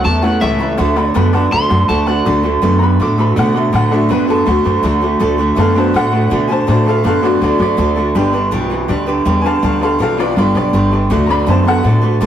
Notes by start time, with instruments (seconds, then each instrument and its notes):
0.04 upright bass E2, clean electric guitar A2 E3 A5, steel-string acoustic guitar A3 C#4 E4 A4, honky-tonk piano C#5 E5 A5
0.22 clean electric guitar A2 E3 F#5, steel-string acoustic guitar A3 C#4 E4 A4, honky-tonk piano C#5 E5 A5
0.40 upright bass C#2, steel-string acoustic guitar A2 E3 A3 C#4 E4 A4, clean electric guitar A2 E3 E5, honky-tonk piano C#5 E5 F#5
0.59 clean electric guitar A2 E3, steel-string acoustic guitar A3 C#4 E4 A4, honky-tonk piano C#5 E5 B5
0.77 upright bass D2, steel-string acoustic guitar D3 A3 D4 F#4 A4, clean electric guitar D3 A3, honky-tonk piano D5 F#5 A5
0.96 clean electric guitar D3 A3, steel-string acoustic guitar D4 F#4 A4, honky-tonk piano D5 F#5 B5
1.14 upright bass F#2, steel-string acoustic guitar D3 A3 D4 F#4 A4, clean electric guitar D3 B3, honky-tonk piano D5 F#5 B5
1.33 clean electric guitar D3 B3, steel-string acoustic guitar D4 F#4 A4, honky-tonk piano D5 F#5 A5
1.51 upright bass D2, clean electric guitar D3 A3 C6, steel-string acoustic guitar A3 D4 F#4 A4, honky-tonk piano D5 F#5 B5
1.69 upright bass F#2, clean electric guitar D3 A3, steel-string acoustic guitar D4 F#4 A4, honky-tonk piano D5 F#5 A5
1.88 upright bass D2, steel-string acoustic guitar D3 A3 D4 F#4 A4, clean electric guitar D3 A3 A5, honky-tonk piano D5 F#5 A5
2.06 clean electric guitar D3 A3 F#5, steel-string acoustic guitar D4 F#4 A4, honky-tonk piano D5 F#5 A5
2.25 upright bass D2, clean electric guitar D3 A3, steel-string acoustic guitar D3 A3 D4 F#4 A4, honky-tonk piano F#3 A3 D4
2.43 clean electric guitar D3 A3, steel-string acoustic guitar D4 F#4 A4
2.62 upright bass F#2, steel-string acoustic guitar D3 A3 D4 F#4 A4, clean electric guitar D3 B3
2.79 clean electric guitar D3 B3, steel-string acoustic guitar D4 F#4 A4, honky-tonk piano A#5
2.83 honky-tonk piano B5
3.00 upright bass A2, clean electric guitar D3 A3, steel-string acoustic guitar A3 D4 F#4 A4, honky-tonk piano D6
3.18 clean electric guitar D3 A3, steel-string acoustic guitar D4 F#4 A4, honky-tonk piano B5
3.36 upright bass B2, clean electric guitar D3 A3, steel-string acoustic guitar D3 A3 D4 F#4 A4, honky-tonk piano F#5
3.54 clean electric guitar D3 A3, steel-string acoustic guitar D4 F#4 A4, honky-tonk piano E5
3.73 upright bass A2, steel-string acoustic guitar D3 A3 D4 F#4 A4, clean electric guitar D3 A3, honky-tonk piano F#5
3.91 clean electric guitar D3 A3, honky-tonk piano F#3 A3 D4 E5, steel-string acoustic guitar D4 F#4 A4
4.09 upright bass F#2, steel-string acoustic guitar D3 A3 D4 F#4 A4, clean electric guitar D3 B3, honky-tonk piano B4
4.28 clean electric guitar D3 B3, steel-string acoustic guitar D4 F#4 A4, honky-tonk piano A4
4.45 upright bass D2, clean electric guitar D3 A3, honky-tonk piano F#3 A3 D4 F#4, steel-string acoustic guitar A3 D4 F#4 A4
4.65 upright bass F#2, clean electric guitar D3 A3, steel-string acoustic guitar D4 F#4 A4
4.83 upright bass D2, steel-string acoustic guitar D3 A3 D4 F#4 A4, clean electric guitar D3 A3
5.01 clean electric guitar D3 A3, steel-string acoustic guitar D4 F#4 A4
5.19 upright bass D2, steel-string acoustic guitar D3 A3 D4 F#4 A4, clean electric guitar D3 A3
5.38 clean electric guitar D3 A3, steel-string acoustic guitar D4 F#4 A4
5.55 upright bass F#2, steel-string acoustic guitar D3 A3 D4 F#4 A4, clean electric guitar D3 B3, honky-tonk piano A4 E5
5.60 honky-tonk piano F5
5.75 clean electric guitar D3 B3, honky-tonk piano F#3 A3 D4 C5 A5, steel-string acoustic guitar D4 F#4 A4
5.94 upright bass A2, clean electric guitar D3 A3, steel-string acoustic guitar A3 D4 F#4 A4, honky-tonk piano F#5
6.12 clean electric guitar D3 A3, steel-string acoustic guitar D4 F#4 A4
6.30 upright bass B2, steel-string acoustic guitar D3 A3 D4 F#4 A4, clean electric guitar D3 A3
6.47 clean electric guitar D3 A3, steel-string acoustic guitar D4 F#4 A4, honky-tonk piano C5 G#5
6.52 honky-tonk piano A5
6.67 upright bass A2, steel-string acoustic guitar D3 A3 D4 F#4 A4, clean electric guitar D3 A3, honky-tonk piano F#3 A3 D4 C5 A5
6.86 clean electric guitar D3 A3, steel-string acoustic guitar D4 F#4 A4, honky-tonk piano A4 F5
7.04 upright bass F#2, steel-string acoustic guitar D3 A3 D4 F#4 A4, clean electric guitar D3 B3, honky-tonk piano A4 F5
7.21 clean electric guitar D3 B3, honky-tonk piano F#3 A3 D4 F#4, steel-string acoustic guitar D4 F#4 A4
7.25 honky-tonk piano D5
7.41 upright bass D2, clean electric guitar D3 A3, steel-string acoustic guitar A3 D4 F#4 A4, honky-tonk piano F#4 D5
7.58 upright bass F#2, clean electric guitar D3 A3, steel-string acoustic guitar D4 F#4 A4, honky-tonk piano D5
7.77 upright bass D2, steel-string acoustic guitar D3 A3 D4 F#4 A4, clean electric guitar D3 A3
7.96 clean electric guitar D3 A3, steel-string acoustic guitar D4 F#4 A4
8.15 upright bass G1, clean electric guitar G2 D3, steel-string acoustic guitar G3 D4 G4 B4, honky-tonk piano G3 B3 D4
8.33 clean electric guitar G2 D3, steel-string acoustic guitar D4 G4 B4
8.51 upright bass B1, clean electric guitar G2 E3, steel-string acoustic guitar G3 D4 G4 B4
8.70 clean electric guitar G2 E3, steel-string acoustic guitar D4 G4 B4
8.88 upright bass D2, clean electric guitar G2 D3, honky-tonk piano G3 B3 D4, steel-string acoustic guitar G3 D4 G4 B4
9.06 clean electric guitar G2 D3, steel-string acoustic guitar D4 G4 B4
9.25 upright bass E2, clean electric guitar G2 D3, steel-string acoustic guitar G3 D4 G4 B4
9.41 clean electric guitar G2 D3, steel-string acoustic guitar G4 B4, honky-tonk piano G#5
9.46 steel-string acoustic guitar D4, honky-tonk piano F5 A5
9.62 upright bass D2, clean electric guitar G2 D3, steel-string acoustic guitar G3 D4 G4 B4, honky-tonk piano F5 A5
9.81 clean electric guitar G2 D3, steel-string acoustic guitar D4 G4 B4, honky-tonk piano A4 F5
9.99 upright bass B1, clean electric guitar G2 E3, steel-string acoustic guitar G3 D4 G4 B4, honky-tonk piano A4 F5
10.17 clean electric guitar G2 E3, honky-tonk piano G3 B3 D4 F4 D5, steel-string acoustic guitar D4 G4 B4
10.36 upright bass G1, clean electric guitar G2 D3, steel-string acoustic guitar G3 D4 G4 B4, honky-tonk piano F4 D5
10.54 upright bass B1, clean electric guitar G2 D3, steel-string acoustic guitar D4 G4 B4, honky-tonk piano D5
10.73 upright bass G1, clean electric guitar G2 D3, steel-string acoustic guitar G3 D4 G4 B4
10.91 clean electric guitar G2 D3, steel-string acoustic guitar D4 G4 B4
11.10 upright bass D2, steel-string acoustic guitar D3 A3 D4 F#4 A4, clean electric guitar D3 A3, honky-tonk piano F#3 A3 D4
11.26 clean electric guitar D3 A3, steel-string acoustic guitar D4 F#4 A4, honky-tonk piano D5 A#5
11.31 honky-tonk piano B5
11.46 upright bass F#2, steel-string acoustic guitar D3 A3 D4 F#4 A4, clean electric guitar D3 B3, honky-tonk piano C5 A5
11.65 clean electric guitar D3 B3, steel-string acoustic guitar D4 F#4 A4, honky-tonk piano A4 F#5
11.83 upright bass A2, clean electric guitar D3 A3, steel-string acoustic guitar A3 D4 F#4 A4
12.01 clean electric guitar D3 A3, steel-string acoustic guitar D4 F#4 A4
12.20 upright bass B1, steel-string acoustic guitar D3 A3 D4 F#4 A4, clean electric guitar D3 A3